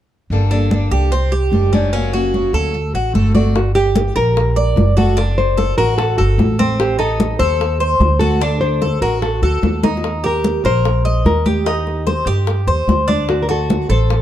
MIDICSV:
0, 0, Header, 1, 7, 480
1, 0, Start_track
1, 0, Key_signature, -2, "minor"
1, 0, Tempo, 405954
1, 362, Time_signature, 4, 2, 24, 8
1, 16811, End_track
2, 0, Start_track
2, 0, Title_t, "Nylon-string guitar"
2, 0, Program_c, 0, 24
2, 4214, Note_on_c, 0, 66, 73
2, 4431, Note_off_c, 0, 66, 0
2, 4436, Note_on_c, 0, 67, 91
2, 4922, Note_off_c, 0, 67, 0
2, 4927, Note_on_c, 0, 70, 101
2, 5880, Note_off_c, 0, 70, 0
2, 5885, Note_on_c, 0, 69, 100
2, 6355, Note_off_c, 0, 69, 0
2, 6360, Note_on_c, 0, 72, 107
2, 6803, Note_off_c, 0, 72, 0
2, 6830, Note_on_c, 0, 70, 100
2, 7055, Note_off_c, 0, 70, 0
2, 7069, Note_on_c, 0, 69, 95
2, 7304, Note_on_c, 0, 66, 83
2, 7318, Note_off_c, 0, 69, 0
2, 7753, Note_off_c, 0, 66, 0
2, 8037, Note_on_c, 0, 67, 78
2, 8257, Note_off_c, 0, 67, 0
2, 8271, Note_on_c, 0, 69, 97
2, 8736, Note_off_c, 0, 69, 0
2, 8741, Note_on_c, 0, 72, 104
2, 9684, Note_off_c, 0, 72, 0
2, 9689, Note_on_c, 0, 69, 93
2, 10144, Note_off_c, 0, 69, 0
2, 10177, Note_on_c, 0, 72, 101
2, 10659, Note_off_c, 0, 72, 0
2, 10663, Note_on_c, 0, 70, 86
2, 10900, Note_off_c, 0, 70, 0
2, 10905, Note_on_c, 0, 69, 78
2, 11129, Note_off_c, 0, 69, 0
2, 11152, Note_on_c, 0, 66, 67
2, 11597, Note_off_c, 0, 66, 0
2, 12133, Note_on_c, 0, 70, 94
2, 12597, Note_off_c, 0, 70, 0
2, 12601, Note_on_c, 0, 72, 109
2, 13311, Note_off_c, 0, 72, 0
2, 13316, Note_on_c, 0, 70, 92
2, 13560, Note_off_c, 0, 70, 0
2, 13568, Note_on_c, 0, 67, 77
2, 14233, Note_off_c, 0, 67, 0
2, 15721, Note_on_c, 0, 66, 74
2, 15873, Note_on_c, 0, 70, 66
2, 15880, Note_off_c, 0, 66, 0
2, 15955, Note_off_c, 0, 70, 0
2, 15971, Note_on_c, 0, 69, 85
2, 16443, Note_off_c, 0, 69, 0
2, 16448, Note_on_c, 0, 72, 93
2, 16811, Note_off_c, 0, 72, 0
2, 16811, End_track
3, 0, Start_track
3, 0, Title_t, "Cuban tres"
3, 0, Program_c, 1, 25
3, 601, Note_on_c, 1, 62, 67
3, 1067, Note_off_c, 1, 62, 0
3, 1081, Note_on_c, 1, 67, 74
3, 1314, Note_off_c, 1, 67, 0
3, 1323, Note_on_c, 1, 60, 74
3, 1555, Note_off_c, 1, 60, 0
3, 1559, Note_on_c, 1, 67, 66
3, 2026, Note_off_c, 1, 67, 0
3, 2042, Note_on_c, 1, 61, 70
3, 2267, Note_off_c, 1, 61, 0
3, 2281, Note_on_c, 1, 61, 72
3, 2514, Note_off_c, 1, 61, 0
3, 2524, Note_on_c, 1, 66, 69
3, 2988, Note_off_c, 1, 66, 0
3, 3005, Note_on_c, 1, 69, 72
3, 3468, Note_off_c, 1, 69, 0
3, 3486, Note_on_c, 1, 66, 64
3, 3716, Note_off_c, 1, 66, 0
3, 3724, Note_on_c, 1, 69, 58
3, 3952, Note_off_c, 1, 69, 0
3, 3957, Note_on_c, 1, 74, 58
3, 4191, Note_off_c, 1, 74, 0
3, 4435, Note_on_c, 1, 67, 72
3, 4902, Note_off_c, 1, 67, 0
3, 4915, Note_on_c, 1, 70, 75
3, 5382, Note_off_c, 1, 70, 0
3, 5396, Note_on_c, 1, 74, 69
3, 5861, Note_off_c, 1, 74, 0
3, 5873, Note_on_c, 1, 66, 70
3, 6107, Note_off_c, 1, 66, 0
3, 6110, Note_on_c, 1, 62, 78
3, 6578, Note_off_c, 1, 62, 0
3, 6591, Note_on_c, 1, 69, 60
3, 6825, Note_off_c, 1, 69, 0
3, 6833, Note_on_c, 1, 66, 77
3, 7298, Note_off_c, 1, 66, 0
3, 7309, Note_on_c, 1, 69, 70
3, 7775, Note_off_c, 1, 69, 0
3, 7794, Note_on_c, 1, 60, 85
3, 8255, Note_off_c, 1, 60, 0
3, 8260, Note_on_c, 1, 63, 70
3, 8730, Note_off_c, 1, 63, 0
3, 8744, Note_on_c, 1, 69, 72
3, 9212, Note_off_c, 1, 69, 0
3, 9226, Note_on_c, 1, 72, 69
3, 9692, Note_off_c, 1, 72, 0
3, 9702, Note_on_c, 1, 66, 67
3, 9938, Note_off_c, 1, 66, 0
3, 9948, Note_on_c, 1, 62, 76
3, 10413, Note_off_c, 1, 62, 0
3, 10426, Note_on_c, 1, 69, 60
3, 10660, Note_off_c, 1, 69, 0
3, 10665, Note_on_c, 1, 66, 74
3, 11132, Note_off_c, 1, 66, 0
3, 11147, Note_on_c, 1, 69, 63
3, 11613, Note_off_c, 1, 69, 0
3, 11629, Note_on_c, 1, 63, 69
3, 12094, Note_off_c, 1, 63, 0
3, 12104, Note_on_c, 1, 67, 67
3, 12572, Note_off_c, 1, 67, 0
3, 12590, Note_on_c, 1, 70, 67
3, 13055, Note_off_c, 1, 70, 0
3, 13065, Note_on_c, 1, 75, 68
3, 13533, Note_off_c, 1, 75, 0
3, 13549, Note_on_c, 1, 67, 65
3, 13782, Note_off_c, 1, 67, 0
3, 13789, Note_on_c, 1, 63, 71
3, 14256, Note_off_c, 1, 63, 0
3, 14268, Note_on_c, 1, 72, 59
3, 14502, Note_off_c, 1, 72, 0
3, 14507, Note_on_c, 1, 67, 77
3, 14975, Note_off_c, 1, 67, 0
3, 14988, Note_on_c, 1, 72, 68
3, 15456, Note_off_c, 1, 72, 0
3, 15462, Note_on_c, 1, 62, 80
3, 15934, Note_off_c, 1, 62, 0
3, 15948, Note_on_c, 1, 66, 73
3, 16418, Note_off_c, 1, 66, 0
3, 16431, Note_on_c, 1, 69, 75
3, 16811, Note_off_c, 1, 69, 0
3, 16811, End_track
4, 0, Start_track
4, 0, Title_t, "Steel-string acoustic guitar"
4, 0, Program_c, 2, 25
4, 371, Note_on_c, 2, 50, 64
4, 378, Note_on_c, 2, 55, 65
4, 381, Note_on_c, 2, 58, 68
4, 385, Note_on_c, 2, 62, 75
4, 389, Note_on_c, 2, 69, 70
4, 597, Note_off_c, 2, 50, 0
4, 600, Note_off_c, 2, 55, 0
4, 600, Note_off_c, 2, 69, 0
4, 602, Note_off_c, 2, 58, 0
4, 604, Note_off_c, 2, 62, 0
4, 614, Note_on_c, 2, 69, 72
4, 617, Note_on_c, 2, 62, 57
4, 623, Note_on_c, 2, 58, 61
4, 626, Note_on_c, 2, 55, 53
4, 839, Note_off_c, 2, 69, 0
4, 840, Note_off_c, 2, 62, 0
4, 843, Note_off_c, 2, 58, 0
4, 844, Note_off_c, 2, 55, 0
4, 857, Note_on_c, 2, 55, 45
4, 868, Note_on_c, 2, 58, 44
4, 868, Note_on_c, 2, 62, 55
4, 873, Note_on_c, 2, 69, 53
4, 1320, Note_off_c, 2, 55, 0
4, 1325, Note_off_c, 2, 62, 0
4, 1326, Note_off_c, 2, 58, 0
4, 1328, Note_off_c, 2, 69, 0
4, 1812, Note_on_c, 2, 51, 43
4, 1817, Note_on_c, 2, 55, 50
4, 1824, Note_on_c, 2, 62, 47
4, 1829, Note_on_c, 2, 67, 60
4, 2036, Note_off_c, 2, 67, 0
4, 2037, Note_off_c, 2, 51, 0
4, 2040, Note_off_c, 2, 55, 0
4, 2044, Note_off_c, 2, 62, 0
4, 2050, Note_on_c, 2, 67, 65
4, 2057, Note_on_c, 2, 62, 70
4, 2063, Note_on_c, 2, 55, 61
4, 2070, Note_on_c, 2, 51, 59
4, 2276, Note_off_c, 2, 67, 0
4, 2280, Note_off_c, 2, 62, 0
4, 2281, Note_off_c, 2, 51, 0
4, 2281, Note_on_c, 2, 49, 75
4, 2283, Note_off_c, 2, 55, 0
4, 2286, Note_on_c, 2, 54, 74
4, 2292, Note_on_c, 2, 58, 71
4, 2296, Note_on_c, 2, 61, 74
4, 2298, Note_on_c, 2, 66, 75
4, 2512, Note_off_c, 2, 49, 0
4, 2513, Note_off_c, 2, 66, 0
4, 2514, Note_off_c, 2, 54, 0
4, 2515, Note_off_c, 2, 61, 0
4, 2517, Note_off_c, 2, 58, 0
4, 2527, Note_on_c, 2, 66, 69
4, 2529, Note_on_c, 2, 61, 64
4, 2531, Note_on_c, 2, 58, 59
4, 2536, Note_on_c, 2, 54, 52
4, 2748, Note_off_c, 2, 54, 0
4, 2755, Note_off_c, 2, 66, 0
4, 2756, Note_off_c, 2, 61, 0
4, 2757, Note_off_c, 2, 58, 0
4, 2762, Note_on_c, 2, 54, 47
4, 2772, Note_on_c, 2, 58, 44
4, 2772, Note_on_c, 2, 61, 49
4, 2780, Note_on_c, 2, 66, 49
4, 3232, Note_off_c, 2, 54, 0
4, 3233, Note_off_c, 2, 66, 0
4, 3236, Note_off_c, 2, 58, 0
4, 3237, Note_off_c, 2, 61, 0
4, 3712, Note_on_c, 2, 50, 44
4, 3723, Note_on_c, 2, 57, 48
4, 3727, Note_on_c, 2, 60, 45
4, 3727, Note_on_c, 2, 66, 53
4, 3941, Note_off_c, 2, 66, 0
4, 3947, Note_off_c, 2, 50, 0
4, 3949, Note_off_c, 2, 60, 0
4, 3952, Note_off_c, 2, 57, 0
4, 3955, Note_on_c, 2, 66, 65
4, 3963, Note_on_c, 2, 60, 64
4, 3972, Note_on_c, 2, 57, 52
4, 4188, Note_off_c, 2, 66, 0
4, 4192, Note_off_c, 2, 60, 0
4, 4196, Note_off_c, 2, 57, 0
4, 16811, End_track
5, 0, Start_track
5, 0, Title_t, "Upright bass"
5, 0, Program_c, 3, 32
5, 357, Note_on_c, 3, 31, 78
5, 1032, Note_off_c, 3, 31, 0
5, 1076, Note_on_c, 3, 36, 77
5, 1752, Note_off_c, 3, 36, 0
5, 1793, Note_on_c, 3, 30, 72
5, 2926, Note_off_c, 3, 30, 0
5, 2992, Note_on_c, 3, 38, 84
5, 3443, Note_off_c, 3, 38, 0
5, 3470, Note_on_c, 3, 33, 63
5, 3698, Note_off_c, 3, 33, 0
5, 3711, Note_on_c, 3, 31, 74
5, 4843, Note_off_c, 3, 31, 0
5, 4913, Note_on_c, 3, 34, 81
5, 5587, Note_off_c, 3, 34, 0
5, 5629, Note_on_c, 3, 30, 85
5, 6759, Note_off_c, 3, 30, 0
5, 6830, Note_on_c, 3, 33, 82
5, 7277, Note_off_c, 3, 33, 0
5, 7313, Note_on_c, 3, 31, 68
5, 7536, Note_off_c, 3, 31, 0
5, 7545, Note_on_c, 3, 33, 82
5, 8675, Note_off_c, 3, 33, 0
5, 8747, Note_on_c, 3, 39, 90
5, 9420, Note_off_c, 3, 39, 0
5, 9460, Note_on_c, 3, 38, 78
5, 10592, Note_off_c, 3, 38, 0
5, 10656, Note_on_c, 3, 33, 77
5, 11108, Note_off_c, 3, 33, 0
5, 11139, Note_on_c, 3, 38, 70
5, 11366, Note_off_c, 3, 38, 0
5, 11383, Note_on_c, 3, 39, 69
5, 12515, Note_off_c, 3, 39, 0
5, 12579, Note_on_c, 3, 34, 87
5, 13257, Note_off_c, 3, 34, 0
5, 13300, Note_on_c, 3, 39, 78
5, 14435, Note_off_c, 3, 39, 0
5, 14494, Note_on_c, 3, 43, 83
5, 14949, Note_off_c, 3, 43, 0
5, 14982, Note_on_c, 3, 39, 66
5, 15210, Note_off_c, 3, 39, 0
5, 15225, Note_on_c, 3, 38, 72
5, 16360, Note_off_c, 3, 38, 0
5, 16426, Note_on_c, 3, 33, 87
5, 16811, Note_off_c, 3, 33, 0
5, 16811, End_track
6, 0, Start_track
6, 0, Title_t, "Muted steel-string acoustic guitar strokes"
6, 1333, Note_on_c, 9, 29, 54
6, 1451, Note_off_c, 9, 29, 0
6, 3240, Note_on_c, 9, 29, 56
6, 3358, Note_off_c, 9, 29, 0
6, 16811, End_track
7, 0, Start_track
7, 0, Title_t, "Drums"
7, 365, Note_on_c, 9, 63, 28
7, 483, Note_off_c, 9, 63, 0
7, 608, Note_on_c, 9, 63, 31
7, 726, Note_off_c, 9, 63, 0
7, 842, Note_on_c, 9, 63, 91
7, 960, Note_off_c, 9, 63, 0
7, 1085, Note_on_c, 9, 63, 33
7, 1203, Note_off_c, 9, 63, 0
7, 1329, Note_on_c, 9, 63, 30
7, 1447, Note_off_c, 9, 63, 0
7, 1565, Note_on_c, 9, 63, 32
7, 1683, Note_off_c, 9, 63, 0
7, 1806, Note_on_c, 9, 63, 79
7, 1924, Note_off_c, 9, 63, 0
7, 2052, Note_on_c, 9, 63, 82
7, 2170, Note_off_c, 9, 63, 0
7, 2289, Note_on_c, 9, 63, 31
7, 2407, Note_off_c, 9, 63, 0
7, 2526, Note_on_c, 9, 63, 34
7, 2644, Note_off_c, 9, 63, 0
7, 2768, Note_on_c, 9, 63, 58
7, 2886, Note_off_c, 9, 63, 0
7, 3007, Note_on_c, 9, 63, 30
7, 3126, Note_off_c, 9, 63, 0
7, 3247, Note_on_c, 9, 63, 29
7, 3365, Note_off_c, 9, 63, 0
7, 3488, Note_on_c, 9, 63, 31
7, 3606, Note_off_c, 9, 63, 0
7, 3727, Note_on_c, 9, 63, 81
7, 3845, Note_off_c, 9, 63, 0
7, 3961, Note_on_c, 9, 63, 85
7, 4079, Note_off_c, 9, 63, 0
7, 4200, Note_on_c, 9, 63, 31
7, 4205, Note_on_c, 9, 60, 70
7, 4318, Note_off_c, 9, 63, 0
7, 4323, Note_off_c, 9, 60, 0
7, 4443, Note_on_c, 9, 60, 32
7, 4443, Note_on_c, 9, 63, 35
7, 4561, Note_off_c, 9, 60, 0
7, 4562, Note_off_c, 9, 63, 0
7, 4677, Note_on_c, 9, 63, 94
7, 4688, Note_on_c, 9, 60, 54
7, 4795, Note_off_c, 9, 63, 0
7, 4806, Note_off_c, 9, 60, 0
7, 4924, Note_on_c, 9, 63, 33
7, 4931, Note_on_c, 9, 60, 32
7, 5042, Note_off_c, 9, 63, 0
7, 5049, Note_off_c, 9, 60, 0
7, 5167, Note_on_c, 9, 60, 66
7, 5167, Note_on_c, 9, 63, 32
7, 5285, Note_off_c, 9, 63, 0
7, 5286, Note_off_c, 9, 60, 0
7, 5405, Note_on_c, 9, 60, 34
7, 5406, Note_on_c, 9, 63, 34
7, 5524, Note_off_c, 9, 60, 0
7, 5524, Note_off_c, 9, 63, 0
7, 5641, Note_on_c, 9, 60, 35
7, 5641, Note_on_c, 9, 61, 76
7, 5651, Note_on_c, 9, 63, 79
7, 5759, Note_off_c, 9, 60, 0
7, 5759, Note_off_c, 9, 61, 0
7, 5770, Note_off_c, 9, 63, 0
7, 5891, Note_on_c, 9, 63, 81
7, 6009, Note_off_c, 9, 63, 0
7, 6124, Note_on_c, 9, 60, 64
7, 6127, Note_on_c, 9, 63, 30
7, 6242, Note_off_c, 9, 60, 0
7, 6246, Note_off_c, 9, 63, 0
7, 6360, Note_on_c, 9, 60, 29
7, 6366, Note_on_c, 9, 63, 34
7, 6478, Note_off_c, 9, 60, 0
7, 6484, Note_off_c, 9, 63, 0
7, 6601, Note_on_c, 9, 60, 55
7, 6601, Note_on_c, 9, 63, 55
7, 6719, Note_off_c, 9, 60, 0
7, 6719, Note_off_c, 9, 63, 0
7, 6837, Note_on_c, 9, 60, 31
7, 6840, Note_on_c, 9, 63, 31
7, 6955, Note_off_c, 9, 60, 0
7, 6959, Note_off_c, 9, 63, 0
7, 7077, Note_on_c, 9, 60, 63
7, 7086, Note_on_c, 9, 63, 33
7, 7195, Note_off_c, 9, 60, 0
7, 7204, Note_off_c, 9, 63, 0
7, 7316, Note_on_c, 9, 60, 32
7, 7325, Note_on_c, 9, 63, 35
7, 7434, Note_off_c, 9, 60, 0
7, 7444, Note_off_c, 9, 63, 0
7, 7557, Note_on_c, 9, 60, 34
7, 7557, Note_on_c, 9, 61, 82
7, 7565, Note_on_c, 9, 63, 83
7, 7676, Note_off_c, 9, 60, 0
7, 7676, Note_off_c, 9, 61, 0
7, 7683, Note_off_c, 9, 63, 0
7, 7804, Note_on_c, 9, 63, 89
7, 7922, Note_off_c, 9, 63, 0
7, 8038, Note_on_c, 9, 60, 65
7, 8042, Note_on_c, 9, 63, 32
7, 8156, Note_off_c, 9, 60, 0
7, 8160, Note_off_c, 9, 63, 0
7, 8274, Note_on_c, 9, 63, 31
7, 8279, Note_on_c, 9, 60, 29
7, 8393, Note_off_c, 9, 63, 0
7, 8397, Note_off_c, 9, 60, 0
7, 8512, Note_on_c, 9, 63, 89
7, 8516, Note_on_c, 9, 60, 56
7, 8631, Note_off_c, 9, 63, 0
7, 8635, Note_off_c, 9, 60, 0
7, 8749, Note_on_c, 9, 63, 34
7, 8754, Note_on_c, 9, 60, 33
7, 8867, Note_off_c, 9, 63, 0
7, 8873, Note_off_c, 9, 60, 0
7, 8986, Note_on_c, 9, 63, 34
7, 8999, Note_on_c, 9, 60, 65
7, 9104, Note_off_c, 9, 63, 0
7, 9117, Note_off_c, 9, 60, 0
7, 9231, Note_on_c, 9, 63, 31
7, 9235, Note_on_c, 9, 60, 32
7, 9349, Note_off_c, 9, 63, 0
7, 9353, Note_off_c, 9, 60, 0
7, 9466, Note_on_c, 9, 63, 85
7, 9477, Note_on_c, 9, 60, 31
7, 9477, Note_on_c, 9, 61, 83
7, 9584, Note_off_c, 9, 63, 0
7, 9595, Note_off_c, 9, 60, 0
7, 9595, Note_off_c, 9, 61, 0
7, 9704, Note_on_c, 9, 63, 83
7, 9822, Note_off_c, 9, 63, 0
7, 9951, Note_on_c, 9, 60, 69
7, 10069, Note_off_c, 9, 60, 0
7, 10183, Note_on_c, 9, 63, 35
7, 10193, Note_on_c, 9, 60, 31
7, 10302, Note_off_c, 9, 63, 0
7, 10312, Note_off_c, 9, 60, 0
7, 10424, Note_on_c, 9, 63, 61
7, 10425, Note_on_c, 9, 60, 52
7, 10542, Note_off_c, 9, 63, 0
7, 10543, Note_off_c, 9, 60, 0
7, 10664, Note_on_c, 9, 60, 32
7, 10667, Note_on_c, 9, 63, 33
7, 10782, Note_off_c, 9, 60, 0
7, 10786, Note_off_c, 9, 63, 0
7, 10906, Note_on_c, 9, 60, 61
7, 10910, Note_on_c, 9, 63, 29
7, 11024, Note_off_c, 9, 60, 0
7, 11029, Note_off_c, 9, 63, 0
7, 11143, Note_on_c, 9, 60, 34
7, 11151, Note_on_c, 9, 63, 35
7, 11261, Note_off_c, 9, 60, 0
7, 11269, Note_off_c, 9, 63, 0
7, 11386, Note_on_c, 9, 60, 34
7, 11386, Note_on_c, 9, 61, 86
7, 11390, Note_on_c, 9, 63, 71
7, 11505, Note_off_c, 9, 60, 0
7, 11505, Note_off_c, 9, 61, 0
7, 11508, Note_off_c, 9, 63, 0
7, 11627, Note_on_c, 9, 63, 90
7, 11629, Note_on_c, 9, 60, 93
7, 11745, Note_off_c, 9, 63, 0
7, 11747, Note_off_c, 9, 60, 0
7, 11791, Note_on_c, 9, 61, 66
7, 11868, Note_on_c, 9, 63, 29
7, 11873, Note_on_c, 9, 60, 61
7, 11909, Note_off_c, 9, 61, 0
7, 11986, Note_off_c, 9, 63, 0
7, 11991, Note_off_c, 9, 60, 0
7, 12107, Note_on_c, 9, 63, 33
7, 12110, Note_on_c, 9, 60, 29
7, 12225, Note_off_c, 9, 63, 0
7, 12229, Note_off_c, 9, 60, 0
7, 12349, Note_on_c, 9, 63, 92
7, 12353, Note_on_c, 9, 60, 47
7, 12467, Note_off_c, 9, 63, 0
7, 12472, Note_off_c, 9, 60, 0
7, 12591, Note_on_c, 9, 63, 30
7, 12592, Note_on_c, 9, 60, 34
7, 12709, Note_off_c, 9, 63, 0
7, 12711, Note_off_c, 9, 60, 0
7, 12832, Note_on_c, 9, 63, 33
7, 12834, Note_on_c, 9, 60, 70
7, 12951, Note_off_c, 9, 63, 0
7, 12952, Note_off_c, 9, 60, 0
7, 13073, Note_on_c, 9, 63, 33
7, 13075, Note_on_c, 9, 60, 32
7, 13191, Note_off_c, 9, 63, 0
7, 13193, Note_off_c, 9, 60, 0
7, 13313, Note_on_c, 9, 60, 35
7, 13313, Note_on_c, 9, 61, 81
7, 13314, Note_on_c, 9, 63, 75
7, 13431, Note_off_c, 9, 60, 0
7, 13431, Note_off_c, 9, 61, 0
7, 13433, Note_off_c, 9, 63, 0
7, 13553, Note_on_c, 9, 63, 82
7, 13671, Note_off_c, 9, 63, 0
7, 13793, Note_on_c, 9, 60, 71
7, 13793, Note_on_c, 9, 63, 29
7, 13911, Note_off_c, 9, 60, 0
7, 13912, Note_off_c, 9, 63, 0
7, 14033, Note_on_c, 9, 63, 36
7, 14034, Note_on_c, 9, 60, 32
7, 14151, Note_off_c, 9, 63, 0
7, 14152, Note_off_c, 9, 60, 0
7, 14271, Note_on_c, 9, 60, 52
7, 14274, Note_on_c, 9, 63, 60
7, 14389, Note_off_c, 9, 60, 0
7, 14392, Note_off_c, 9, 63, 0
7, 14510, Note_on_c, 9, 60, 35
7, 14519, Note_on_c, 9, 63, 34
7, 14628, Note_off_c, 9, 60, 0
7, 14638, Note_off_c, 9, 63, 0
7, 14747, Note_on_c, 9, 60, 66
7, 14759, Note_on_c, 9, 63, 32
7, 14866, Note_off_c, 9, 60, 0
7, 14877, Note_off_c, 9, 63, 0
7, 14992, Note_on_c, 9, 60, 32
7, 15003, Note_on_c, 9, 63, 33
7, 15110, Note_off_c, 9, 60, 0
7, 15122, Note_off_c, 9, 63, 0
7, 15238, Note_on_c, 9, 63, 81
7, 15240, Note_on_c, 9, 60, 33
7, 15240, Note_on_c, 9, 61, 86
7, 15356, Note_off_c, 9, 63, 0
7, 15358, Note_off_c, 9, 60, 0
7, 15358, Note_off_c, 9, 61, 0
7, 15479, Note_on_c, 9, 63, 79
7, 15598, Note_off_c, 9, 63, 0
7, 15711, Note_on_c, 9, 60, 65
7, 15726, Note_on_c, 9, 63, 30
7, 15829, Note_off_c, 9, 60, 0
7, 15844, Note_off_c, 9, 63, 0
7, 15956, Note_on_c, 9, 60, 33
7, 15961, Note_on_c, 9, 63, 32
7, 16075, Note_off_c, 9, 60, 0
7, 16079, Note_off_c, 9, 63, 0
7, 16198, Note_on_c, 9, 60, 50
7, 16202, Note_on_c, 9, 63, 94
7, 16316, Note_off_c, 9, 60, 0
7, 16320, Note_off_c, 9, 63, 0
7, 16441, Note_on_c, 9, 60, 30
7, 16442, Note_on_c, 9, 63, 34
7, 16559, Note_off_c, 9, 60, 0
7, 16560, Note_off_c, 9, 63, 0
7, 16677, Note_on_c, 9, 60, 68
7, 16678, Note_on_c, 9, 63, 30
7, 16795, Note_off_c, 9, 60, 0
7, 16796, Note_off_c, 9, 63, 0
7, 16811, End_track
0, 0, End_of_file